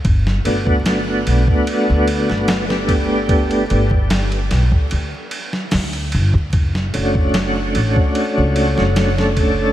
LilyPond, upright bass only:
\new Staff \with { instrumentName = "Upright bass" } { \clef bass \time 4/4 \key g \lydian \tempo 4 = 74 g,,8 g,,4 b,,16 r8 d,8 g,,4~ g,,16~ | g,,8 g,,4 b,,16 r16 d,16 r8. d,8 g,,16 d,16 | fis,,8 fis,,4 a,,16 r8 cis,8 fis,,4~ fis,,16 | }